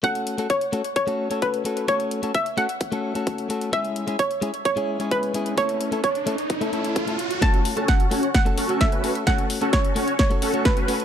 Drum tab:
HH |xxxxxxxxxx-xxxxx|xxxxxxxxxx-xxxxx|xxxxxxxxxx-xxxxx|xxxxxxxxxxxxxxxx|
SD |----------------|----------------|----------------|----------------|
BD |o---o---o---o---|o---o---o---o---|o---o---o---o---|o---o---o---o---|

HH |xxoxxxoxxxoxxxox|xxoxxxoxxxoxxxox|
SD |o---o---o---o---|o---o---o---o---|
BD |o---o---o---o---|o---o---o---o---|